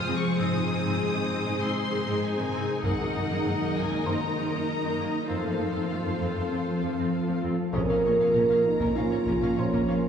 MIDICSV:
0, 0, Header, 1, 13, 480
1, 0, Start_track
1, 0, Tempo, 612245
1, 303, Time_signature, 4, 2, 24, 8
1, 7907, End_track
2, 0, Start_track
2, 0, Title_t, "Felt piano"
2, 0, Program_c, 0, 0
2, 0, Control_c, 0, 64, 127
2, 0, Note_on_c, 0, 89, 48
2, 317, Control_c, 0, 64, 0
2, 458, Control_c, 0, 64, 127
2, 1232, Note_off_c, 0, 89, 0
2, 2238, Control_c, 0, 64, 0
2, 2388, Control_c, 0, 64, 127
2, 3184, Note_on_c, 0, 84, 42
2, 3188, Note_on_c, 0, 72, 34
2, 4157, Control_c, 0, 64, 0
2, 4278, Control_c, 0, 64, 127
2, 4592, Note_off_c, 0, 84, 0
2, 4594, Note_off_c, 0, 72, 0
2, 6067, Note_on_c, 0, 87, 40
2, 6079, Control_c, 0, 64, 0
2, 6193, Control_c, 0, 64, 127
2, 7474, Note_off_c, 0, 87, 0
2, 7520, Note_on_c, 0, 84, 35
2, 7524, Note_on_c, 0, 72, 34
2, 7907, Note_off_c, 0, 72, 0
2, 7907, Note_off_c, 0, 84, 0
2, 7907, End_track
3, 0, Start_track
3, 0, Title_t, "Violin section"
3, 0, Program_c, 1, 48
3, 0, Note_on_c, 1, 87, 78
3, 139, Note_off_c, 1, 87, 0
3, 141, Note_on_c, 1, 85, 77
3, 294, Note_on_c, 1, 87, 77
3, 302, Note_off_c, 1, 85, 0
3, 1239, Note_off_c, 1, 87, 0
3, 1258, Note_on_c, 1, 84, 70
3, 1739, Note_on_c, 1, 80, 76
3, 1740, Note_off_c, 1, 84, 0
3, 2221, Note_off_c, 1, 80, 0
3, 2226, Note_on_c, 1, 78, 74
3, 2930, Note_off_c, 1, 78, 0
3, 2946, Note_on_c, 1, 80, 66
3, 3184, Note_off_c, 1, 80, 0
3, 3196, Note_on_c, 1, 82, 59
3, 4140, Note_on_c, 1, 77, 55
3, 4149, Note_off_c, 1, 82, 0
3, 5790, Note_off_c, 1, 77, 0
3, 6063, Note_on_c, 1, 82, 45
3, 7907, Note_off_c, 1, 82, 0
3, 7907, End_track
4, 0, Start_track
4, 0, Title_t, "Violin section"
4, 0, Program_c, 2, 48
4, 0, Note_on_c, 2, 68, 68
4, 0, Note_on_c, 2, 72, 60
4, 2194, Note_off_c, 2, 68, 0
4, 2227, Note_on_c, 2, 75, 55
4, 2229, Note_off_c, 2, 72, 0
4, 2232, Note_on_c, 2, 70, 58
4, 4114, Note_off_c, 2, 75, 0
4, 4116, Note_off_c, 2, 70, 0
4, 4135, Note_on_c, 2, 72, 43
4, 4140, Note_on_c, 2, 69, 48
4, 5873, Note_off_c, 2, 69, 0
4, 5902, Note_off_c, 2, 72, 0
4, 6063, Note_on_c, 2, 70, 51
4, 6111, Note_off_c, 2, 70, 0
4, 6190, Note_on_c, 2, 77, 34
4, 6236, Note_off_c, 2, 77, 0
4, 6312, Note_on_c, 2, 73, 40
4, 6358, Note_off_c, 2, 73, 0
4, 6432, Note_on_c, 2, 77, 37
4, 6478, Note_off_c, 2, 77, 0
4, 6545, Note_on_c, 2, 70, 46
4, 6593, Note_off_c, 2, 70, 0
4, 6661, Note_on_c, 2, 77, 35
4, 6709, Note_off_c, 2, 77, 0
4, 6895, Note_on_c, 2, 70, 59
4, 6945, Note_off_c, 2, 70, 0
4, 7023, Note_on_c, 2, 77, 40
4, 7071, Note_off_c, 2, 77, 0
4, 7143, Note_on_c, 2, 73, 38
4, 7191, Note_off_c, 2, 73, 0
4, 7259, Note_on_c, 2, 70, 58
4, 7308, Note_off_c, 2, 70, 0
4, 7386, Note_on_c, 2, 77, 45
4, 7433, Note_off_c, 2, 77, 0
4, 7498, Note_on_c, 2, 73, 44
4, 7547, Note_off_c, 2, 73, 0
4, 7620, Note_on_c, 2, 70, 47
4, 7668, Note_off_c, 2, 70, 0
4, 7747, Note_on_c, 2, 77, 40
4, 7794, Note_off_c, 2, 77, 0
4, 7907, End_track
5, 0, Start_track
5, 0, Title_t, "French horn section"
5, 0, Program_c, 3, 60
5, 6068, Note_on_c, 3, 70, 73
5, 6754, Note_off_c, 3, 70, 0
5, 6779, Note_on_c, 3, 63, 64
5, 7021, Note_off_c, 3, 63, 0
5, 7022, Note_on_c, 3, 65, 59
5, 7501, Note_on_c, 3, 61, 73
5, 7502, Note_off_c, 3, 65, 0
5, 7907, Note_off_c, 3, 61, 0
5, 7907, End_track
6, 0, Start_track
6, 0, Title_t, "Ambient pad"
6, 0, Program_c, 4, 92
6, 0, Note_on_c, 4, 48, 67
6, 0, Note_on_c, 4, 53, 73
6, 0, Note_on_c, 4, 65, 62
6, 0, Note_on_c, 4, 68, 72
6, 299, Note_off_c, 4, 53, 0
6, 306, Note_off_c, 4, 65, 0
6, 307, Note_on_c, 4, 63, 73
6, 309, Note_on_c, 4, 56, 65
6, 2220, Note_on_c, 4, 54, 66
6, 2221, Note_on_c, 4, 58, 61
6, 2222, Note_on_c, 4, 70, 70
6, 2225, Note_off_c, 4, 48, 0
6, 2225, Note_off_c, 4, 68, 0
6, 2226, Note_off_c, 4, 56, 0
6, 4136, Note_on_c, 4, 69, 66
6, 4137, Note_on_c, 4, 65, 63
6, 4139, Note_on_c, 4, 60, 61
6, 4141, Note_off_c, 4, 54, 0
6, 4142, Note_off_c, 4, 58, 0
6, 4142, Note_off_c, 4, 70, 0
6, 4143, Note_on_c, 4, 53, 66
6, 4145, Note_off_c, 4, 63, 0
6, 6048, Note_off_c, 4, 53, 0
6, 6054, Note_off_c, 4, 65, 0
6, 6057, Note_on_c, 4, 53, 69
6, 6059, Note_off_c, 4, 69, 0
6, 6060, Note_on_c, 4, 70, 69
6, 6061, Note_off_c, 4, 60, 0
6, 6063, Note_on_c, 4, 65, 65
6, 6065, Note_on_c, 4, 61, 63
6, 7907, Note_off_c, 4, 53, 0
6, 7907, Note_off_c, 4, 61, 0
6, 7907, Note_off_c, 4, 65, 0
6, 7907, Note_off_c, 4, 70, 0
6, 7907, End_track
7, 0, Start_track
7, 0, Title_t, "Viola section"
7, 0, Program_c, 5, 48
7, 0, Note_on_c, 5, 65, 53
7, 62, Note_on_c, 5, 60, 64
7, 110, Note_off_c, 5, 60, 0
7, 301, Note_on_c, 5, 60, 63
7, 303, Note_off_c, 5, 65, 0
7, 303, Note_on_c, 5, 63, 53
7, 350, Note_off_c, 5, 60, 0
7, 424, Note_on_c, 5, 56, 42
7, 472, Note_off_c, 5, 56, 0
7, 545, Note_on_c, 5, 51, 44
7, 593, Note_off_c, 5, 51, 0
7, 655, Note_on_c, 5, 60, 66
7, 705, Note_off_c, 5, 60, 0
7, 777, Note_on_c, 5, 56, 52
7, 826, Note_off_c, 5, 56, 0
7, 898, Note_on_c, 5, 51, 42
7, 947, Note_off_c, 5, 51, 0
7, 1016, Note_on_c, 5, 60, 66
7, 1065, Note_off_c, 5, 60, 0
7, 1143, Note_on_c, 5, 56, 39
7, 1191, Note_off_c, 5, 56, 0
7, 1264, Note_on_c, 5, 60, 61
7, 1312, Note_off_c, 5, 60, 0
7, 1501, Note_on_c, 5, 51, 50
7, 1549, Note_off_c, 5, 51, 0
7, 1626, Note_on_c, 5, 60, 65
7, 1673, Note_off_c, 5, 60, 0
7, 1868, Note_on_c, 5, 51, 50
7, 1915, Note_off_c, 5, 51, 0
7, 1982, Note_on_c, 5, 60, 54
7, 2030, Note_off_c, 5, 60, 0
7, 2226, Note_on_c, 5, 58, 50
7, 2274, Note_off_c, 5, 58, 0
7, 2347, Note_on_c, 5, 54, 38
7, 2394, Note_off_c, 5, 54, 0
7, 2465, Note_on_c, 5, 51, 41
7, 2513, Note_off_c, 5, 51, 0
7, 2584, Note_on_c, 5, 58, 51
7, 2632, Note_off_c, 5, 58, 0
7, 2704, Note_on_c, 5, 54, 37
7, 2752, Note_off_c, 5, 54, 0
7, 2827, Note_on_c, 5, 51, 36
7, 2874, Note_off_c, 5, 51, 0
7, 2949, Note_on_c, 5, 58, 55
7, 2996, Note_off_c, 5, 58, 0
7, 3067, Note_on_c, 5, 54, 40
7, 3114, Note_off_c, 5, 54, 0
7, 3191, Note_on_c, 5, 58, 55
7, 3237, Note_off_c, 5, 58, 0
7, 3427, Note_on_c, 5, 51, 44
7, 3475, Note_off_c, 5, 51, 0
7, 3548, Note_on_c, 5, 58, 45
7, 3595, Note_off_c, 5, 58, 0
7, 3795, Note_on_c, 5, 51, 38
7, 3840, Note_off_c, 5, 51, 0
7, 3913, Note_on_c, 5, 58, 49
7, 3959, Note_off_c, 5, 58, 0
7, 4111, Note_off_c, 5, 63, 0
7, 4152, Note_on_c, 5, 65, 40
7, 4153, Note_on_c, 5, 60, 44
7, 4199, Note_off_c, 5, 60, 0
7, 4273, Note_on_c, 5, 57, 26
7, 4319, Note_off_c, 5, 57, 0
7, 4391, Note_on_c, 5, 53, 29
7, 4438, Note_off_c, 5, 53, 0
7, 4513, Note_on_c, 5, 60, 41
7, 4559, Note_off_c, 5, 60, 0
7, 4632, Note_on_c, 5, 57, 37
7, 4678, Note_off_c, 5, 57, 0
7, 4760, Note_on_c, 5, 53, 26
7, 4805, Note_off_c, 5, 53, 0
7, 4877, Note_on_c, 5, 60, 48
7, 4922, Note_off_c, 5, 60, 0
7, 4999, Note_on_c, 5, 57, 29
7, 5044, Note_off_c, 5, 57, 0
7, 5117, Note_on_c, 5, 60, 38
7, 5162, Note_off_c, 5, 60, 0
7, 5354, Note_on_c, 5, 53, 42
7, 5400, Note_off_c, 5, 53, 0
7, 5473, Note_on_c, 5, 60, 48
7, 5519, Note_off_c, 5, 60, 0
7, 5708, Note_on_c, 5, 53, 39
7, 5755, Note_off_c, 5, 53, 0
7, 5831, Note_on_c, 5, 60, 41
7, 5877, Note_off_c, 5, 60, 0
7, 5879, Note_off_c, 5, 65, 0
7, 6067, Note_on_c, 5, 61, 56
7, 6114, Note_off_c, 5, 61, 0
7, 6188, Note_on_c, 5, 61, 36
7, 6235, Note_off_c, 5, 61, 0
7, 6315, Note_on_c, 5, 61, 39
7, 6360, Note_off_c, 5, 61, 0
7, 6434, Note_on_c, 5, 61, 39
7, 6480, Note_off_c, 5, 61, 0
7, 6544, Note_on_c, 5, 61, 56
7, 6592, Note_off_c, 5, 61, 0
7, 6665, Note_on_c, 5, 61, 39
7, 6712, Note_off_c, 5, 61, 0
7, 6904, Note_on_c, 5, 61, 46
7, 6952, Note_off_c, 5, 61, 0
7, 7027, Note_on_c, 5, 61, 41
7, 7074, Note_off_c, 5, 61, 0
7, 7147, Note_on_c, 5, 61, 39
7, 7195, Note_off_c, 5, 61, 0
7, 7262, Note_on_c, 5, 61, 57
7, 7310, Note_off_c, 5, 61, 0
7, 7388, Note_on_c, 5, 61, 43
7, 7435, Note_off_c, 5, 61, 0
7, 7508, Note_on_c, 5, 61, 37
7, 7555, Note_off_c, 5, 61, 0
7, 7627, Note_on_c, 5, 61, 57
7, 7674, Note_off_c, 5, 61, 0
7, 7747, Note_on_c, 5, 61, 46
7, 7794, Note_off_c, 5, 61, 0
7, 7907, End_track
8, 0, Start_track
8, 0, Title_t, "Synth pluck"
8, 0, Program_c, 6, 84
8, 61, Note_on_c, 6, 53, 79
8, 134, Note_off_c, 6, 53, 0
8, 297, Note_on_c, 6, 56, 73
8, 371, Note_off_c, 6, 56, 0
8, 424, Note_on_c, 6, 60, 55
8, 496, Note_off_c, 6, 60, 0
8, 543, Note_on_c, 6, 60, 47
8, 615, Note_off_c, 6, 60, 0
8, 663, Note_on_c, 6, 56, 74
8, 735, Note_off_c, 6, 56, 0
8, 906, Note_on_c, 6, 60, 51
8, 977, Note_off_c, 6, 60, 0
8, 1024, Note_on_c, 6, 56, 69
8, 1095, Note_off_c, 6, 56, 0
8, 1144, Note_on_c, 6, 63, 57
8, 1216, Note_off_c, 6, 63, 0
8, 1267, Note_on_c, 6, 56, 68
8, 1338, Note_off_c, 6, 56, 0
8, 1507, Note_on_c, 6, 68, 57
8, 1578, Note_off_c, 6, 68, 0
8, 1618, Note_on_c, 6, 56, 74
8, 1692, Note_off_c, 6, 56, 0
8, 1859, Note_on_c, 6, 60, 58
8, 1932, Note_off_c, 6, 60, 0
8, 1980, Note_on_c, 6, 56, 71
8, 2053, Note_off_c, 6, 56, 0
8, 2226, Note_on_c, 6, 51, 66
8, 2297, Note_off_c, 6, 51, 0
8, 2343, Note_on_c, 6, 54, 50
8, 2415, Note_off_c, 6, 54, 0
8, 2465, Note_on_c, 6, 54, 50
8, 2536, Note_off_c, 6, 54, 0
8, 2587, Note_on_c, 6, 51, 75
8, 2658, Note_off_c, 6, 51, 0
8, 2700, Note_on_c, 6, 58, 53
8, 2773, Note_off_c, 6, 58, 0
8, 2819, Note_on_c, 6, 54, 50
8, 2892, Note_off_c, 6, 54, 0
8, 2941, Note_on_c, 6, 51, 68
8, 3014, Note_off_c, 6, 51, 0
8, 3061, Note_on_c, 6, 58, 53
8, 3134, Note_off_c, 6, 58, 0
8, 3176, Note_on_c, 6, 51, 69
8, 3250, Note_off_c, 6, 51, 0
8, 3419, Note_on_c, 6, 63, 60
8, 3492, Note_off_c, 6, 63, 0
8, 3537, Note_on_c, 6, 51, 64
8, 3611, Note_off_c, 6, 51, 0
8, 3779, Note_on_c, 6, 54, 55
8, 3852, Note_off_c, 6, 54, 0
8, 3903, Note_on_c, 6, 51, 75
8, 3975, Note_off_c, 6, 51, 0
8, 4143, Note_on_c, 6, 53, 70
8, 4215, Note_off_c, 6, 53, 0
8, 4266, Note_on_c, 6, 57, 50
8, 4337, Note_off_c, 6, 57, 0
8, 4383, Note_on_c, 6, 57, 46
8, 4455, Note_off_c, 6, 57, 0
8, 4500, Note_on_c, 6, 53, 66
8, 4573, Note_off_c, 6, 53, 0
8, 4625, Note_on_c, 6, 60, 54
8, 4696, Note_off_c, 6, 60, 0
8, 4742, Note_on_c, 6, 57, 47
8, 4814, Note_off_c, 6, 57, 0
8, 4862, Note_on_c, 6, 53, 59
8, 4934, Note_off_c, 6, 53, 0
8, 4985, Note_on_c, 6, 60, 56
8, 5056, Note_off_c, 6, 60, 0
8, 5106, Note_on_c, 6, 53, 68
8, 5177, Note_off_c, 6, 53, 0
8, 5346, Note_on_c, 6, 65, 52
8, 5417, Note_off_c, 6, 65, 0
8, 5462, Note_on_c, 6, 53, 66
8, 5534, Note_off_c, 6, 53, 0
8, 5706, Note_on_c, 6, 57, 51
8, 5777, Note_off_c, 6, 57, 0
8, 5821, Note_on_c, 6, 53, 69
8, 5894, Note_off_c, 6, 53, 0
8, 6064, Note_on_c, 6, 58, 74
8, 6136, Note_off_c, 6, 58, 0
8, 6184, Note_on_c, 6, 70, 54
8, 6256, Note_off_c, 6, 70, 0
8, 6308, Note_on_c, 6, 65, 51
8, 6378, Note_off_c, 6, 65, 0
8, 6429, Note_on_c, 6, 70, 53
8, 6499, Note_off_c, 6, 70, 0
8, 6544, Note_on_c, 6, 58, 76
8, 6616, Note_off_c, 6, 58, 0
8, 6667, Note_on_c, 6, 65, 52
8, 6738, Note_off_c, 6, 65, 0
8, 6907, Note_on_c, 6, 58, 73
8, 6978, Note_off_c, 6, 58, 0
8, 7026, Note_on_c, 6, 65, 51
8, 7097, Note_off_c, 6, 65, 0
8, 7147, Note_on_c, 6, 65, 55
8, 7218, Note_off_c, 6, 65, 0
8, 7264, Note_on_c, 6, 58, 81
8, 7336, Note_off_c, 6, 58, 0
8, 7388, Note_on_c, 6, 61, 53
8, 7458, Note_off_c, 6, 61, 0
8, 7509, Note_on_c, 6, 61, 49
8, 7579, Note_off_c, 6, 61, 0
8, 7630, Note_on_c, 6, 58, 85
8, 7700, Note_off_c, 6, 58, 0
8, 7907, End_track
9, 0, Start_track
9, 0, Title_t, "Trombone section"
9, 0, Program_c, 7, 61
9, 6068, Note_on_c, 7, 53, 51
9, 6072, Note_on_c, 7, 61, 48
9, 6234, Note_off_c, 7, 53, 0
9, 6236, Note_off_c, 7, 61, 0
9, 7019, Note_on_c, 7, 53, 52
9, 7019, Note_on_c, 7, 61, 55
9, 7188, Note_off_c, 7, 53, 0
9, 7188, Note_off_c, 7, 61, 0
9, 7907, End_track
10, 0, Start_track
10, 0, Title_t, "Cello section"
10, 0, Program_c, 8, 48
10, 63, Note_on_c, 8, 41, 68
10, 111, Note_off_c, 8, 41, 0
10, 304, Note_on_c, 8, 44, 61
10, 352, Note_off_c, 8, 44, 0
10, 431, Note_on_c, 8, 44, 50
10, 478, Note_off_c, 8, 44, 0
10, 551, Note_on_c, 8, 44, 43
10, 597, Note_off_c, 8, 44, 0
10, 664, Note_on_c, 8, 44, 61
10, 712, Note_off_c, 8, 44, 0
10, 789, Note_on_c, 8, 44, 41
10, 836, Note_off_c, 8, 44, 0
10, 908, Note_on_c, 8, 44, 41
10, 955, Note_off_c, 8, 44, 0
10, 1025, Note_on_c, 8, 44, 67
10, 1073, Note_off_c, 8, 44, 0
10, 1144, Note_on_c, 8, 44, 48
10, 1192, Note_off_c, 8, 44, 0
10, 1260, Note_on_c, 8, 44, 67
10, 1309, Note_off_c, 8, 44, 0
10, 1509, Note_on_c, 8, 44, 46
10, 1556, Note_off_c, 8, 44, 0
10, 1627, Note_on_c, 8, 44, 69
10, 1674, Note_off_c, 8, 44, 0
10, 1866, Note_on_c, 8, 44, 49
10, 1913, Note_off_c, 8, 44, 0
10, 1983, Note_on_c, 8, 44, 63
10, 2031, Note_off_c, 8, 44, 0
10, 2226, Note_on_c, 8, 42, 56
10, 2274, Note_off_c, 8, 42, 0
10, 2346, Note_on_c, 8, 42, 43
10, 2393, Note_off_c, 8, 42, 0
10, 2471, Note_on_c, 8, 42, 42
10, 2517, Note_off_c, 8, 42, 0
10, 2586, Note_on_c, 8, 42, 58
10, 2634, Note_off_c, 8, 42, 0
10, 2709, Note_on_c, 8, 42, 34
10, 2756, Note_off_c, 8, 42, 0
10, 2826, Note_on_c, 8, 42, 39
10, 2873, Note_off_c, 8, 42, 0
10, 2941, Note_on_c, 8, 42, 57
10, 2990, Note_off_c, 8, 42, 0
10, 3058, Note_on_c, 8, 42, 39
10, 3107, Note_off_c, 8, 42, 0
10, 3178, Note_on_c, 8, 42, 54
10, 3227, Note_off_c, 8, 42, 0
10, 3417, Note_on_c, 8, 42, 36
10, 3466, Note_off_c, 8, 42, 0
10, 3537, Note_on_c, 8, 42, 53
10, 3586, Note_off_c, 8, 42, 0
10, 3788, Note_on_c, 8, 42, 38
10, 3835, Note_off_c, 8, 42, 0
10, 3909, Note_on_c, 8, 42, 51
10, 3956, Note_off_c, 8, 42, 0
10, 4150, Note_on_c, 8, 41, 44
10, 4197, Note_off_c, 8, 41, 0
10, 4273, Note_on_c, 8, 41, 35
10, 4319, Note_off_c, 8, 41, 0
10, 4394, Note_on_c, 8, 41, 30
10, 4440, Note_off_c, 8, 41, 0
10, 4512, Note_on_c, 8, 41, 44
10, 4558, Note_off_c, 8, 41, 0
10, 4631, Note_on_c, 8, 41, 31
10, 4678, Note_off_c, 8, 41, 0
10, 4752, Note_on_c, 8, 41, 34
10, 4798, Note_off_c, 8, 41, 0
10, 4867, Note_on_c, 8, 41, 47
10, 4914, Note_off_c, 8, 41, 0
10, 4991, Note_on_c, 8, 41, 30
10, 5037, Note_off_c, 8, 41, 0
10, 5102, Note_on_c, 8, 41, 47
10, 5150, Note_off_c, 8, 41, 0
10, 5351, Note_on_c, 8, 41, 34
10, 5398, Note_off_c, 8, 41, 0
10, 5470, Note_on_c, 8, 41, 52
10, 5517, Note_off_c, 8, 41, 0
10, 5710, Note_on_c, 8, 41, 35
10, 5757, Note_off_c, 8, 41, 0
10, 5830, Note_on_c, 8, 41, 45
10, 5877, Note_off_c, 8, 41, 0
10, 6079, Note_on_c, 8, 46, 50
10, 6124, Note_off_c, 8, 46, 0
10, 6190, Note_on_c, 8, 46, 46
10, 6237, Note_off_c, 8, 46, 0
10, 6314, Note_on_c, 8, 46, 38
10, 6360, Note_off_c, 8, 46, 0
10, 6428, Note_on_c, 8, 46, 37
10, 6475, Note_off_c, 8, 46, 0
10, 6541, Note_on_c, 8, 46, 50
10, 6589, Note_off_c, 8, 46, 0
10, 6664, Note_on_c, 8, 46, 36
10, 6712, Note_off_c, 8, 46, 0
10, 6907, Note_on_c, 8, 46, 54
10, 6954, Note_off_c, 8, 46, 0
10, 7026, Note_on_c, 8, 46, 44
10, 7073, Note_off_c, 8, 46, 0
10, 7146, Note_on_c, 8, 46, 40
10, 7193, Note_off_c, 8, 46, 0
10, 7268, Note_on_c, 8, 46, 59
10, 7315, Note_off_c, 8, 46, 0
10, 7381, Note_on_c, 8, 46, 42
10, 7429, Note_off_c, 8, 46, 0
10, 7500, Note_on_c, 8, 46, 40
10, 7549, Note_off_c, 8, 46, 0
10, 7619, Note_on_c, 8, 46, 60
10, 7668, Note_off_c, 8, 46, 0
10, 7746, Note_on_c, 8, 46, 43
10, 7794, Note_off_c, 8, 46, 0
10, 7907, End_track
11, 0, Start_track
11, 0, Title_t, "Double bass section"
11, 0, Program_c, 10, 48
11, 6068, Note_on_c, 10, 34, 51
11, 6115, Note_off_c, 10, 34, 0
11, 6304, Note_on_c, 10, 34, 41
11, 6351, Note_off_c, 10, 34, 0
11, 6546, Note_on_c, 10, 34, 53
11, 6593, Note_off_c, 10, 34, 0
11, 7032, Note_on_c, 10, 34, 36
11, 7078, Note_off_c, 10, 34, 0
11, 7268, Note_on_c, 10, 34, 63
11, 7315, Note_off_c, 10, 34, 0
11, 7511, Note_on_c, 10, 34, 42
11, 7558, Note_off_c, 10, 34, 0
11, 7745, Note_on_c, 10, 34, 37
11, 7792, Note_off_c, 10, 34, 0
11, 7907, End_track
12, 0, Start_track
12, 0, Title_t, "Tuba"
12, 0, Program_c, 11, 58
12, 6061, Note_on_c, 11, 34, 54
12, 6109, Note_off_c, 11, 34, 0
12, 6308, Note_on_c, 11, 34, 40
12, 6355, Note_off_c, 11, 34, 0
12, 6550, Note_on_c, 11, 34, 49
12, 6596, Note_off_c, 11, 34, 0
12, 7027, Note_on_c, 11, 34, 43
12, 7074, Note_off_c, 11, 34, 0
12, 7265, Note_on_c, 11, 34, 47
12, 7312, Note_off_c, 11, 34, 0
12, 7502, Note_on_c, 11, 34, 40
12, 7550, Note_off_c, 11, 34, 0
12, 7747, Note_on_c, 11, 34, 41
12, 7794, Note_off_c, 11, 34, 0
12, 7907, End_track
13, 0, Start_track
13, 0, Title_t, "Taiko and cinematic ensemble drums"
13, 2219, Note_on_c, 9, 41, 60
13, 2297, Note_off_c, 9, 41, 0
13, 2941, Note_on_c, 9, 41, 35
13, 3019, Note_off_c, 9, 41, 0
13, 6060, Note_on_c, 9, 41, 88
13, 6139, Note_off_c, 9, 41, 0
13, 6900, Note_on_c, 9, 41, 73
13, 6978, Note_off_c, 9, 41, 0
13, 7261, Note_on_c, 9, 41, 58
13, 7339, Note_off_c, 9, 41, 0
13, 7621, Note_on_c, 9, 41, 72
13, 7699, Note_off_c, 9, 41, 0
13, 7907, End_track
0, 0, End_of_file